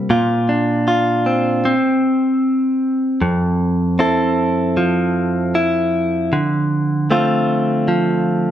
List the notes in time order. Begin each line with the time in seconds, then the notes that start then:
Already playing: G3 A#3 C4
0.10 A#2 F4
0.49 D4
0.88 F4
1.26 C4
1.65 C4
3.22 F2
3.99 C4 E4 A4
4.77 F3
5.55 E4
6.33 D3
7.10 A3 C4 F4
7.88 F3